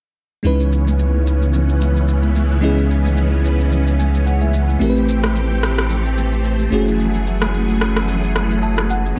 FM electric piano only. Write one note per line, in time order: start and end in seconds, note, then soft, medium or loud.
0.43 2.58 G#3 medium
0.43 2.58 C#4 medium
0.43 2.59 D#4 medium
0.43 2.59 E4 medium
0.43 2.60 B4 medium
2.61 4.76 G#3 medium
2.61 4.77 C#4 medium
2.61 4.77 E4 medium
2.61 4.78 G#4 medium
2.61 4.77 D#5 medium
3.99 4.25 G#5 medium
4.26 4.40 F#5 medium
4.42 4.78 E5 medium
4.79 6.67 A3 medium
4.79 6.68 C4 medium
4.79 6.68 E4 medium
4.79 6.69 G4 medium
4.79 4.89 A#4 medium
4.90 6.73 B4 medium
6.70 8.85 A3 medium
6.70 8.86 C#4 medium
6.70 8.86 E4 medium
6.70 8.87 F#4 medium
6.70 8.87 G#4 medium
8.63 8.88 A5 medium
8.90 9.16 F#5 medium
9.16 9.19 B3 medium